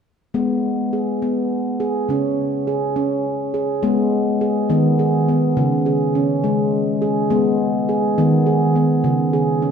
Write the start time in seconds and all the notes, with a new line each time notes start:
0.34 G#3 B3
0.93 G#4
1.22 B3
1.80 G#4
2.09 C#3 C#4
2.67 G#4
2.96 C#4
3.54 G#4
3.83 G#3 B3
4.41 G#4
4.70 D#3 B3
4.99 G#4
5.29 B3
5.57 C#3
5.86 G#4
6.15 C#4
6.44 G#3
7.02 G#4
7.30 G#3 B3
7.89 G#4
8.18 D#3 B3
8.46 G#4
8.76 B3
9.04 C#3
9.33 G#4
9.62 C#4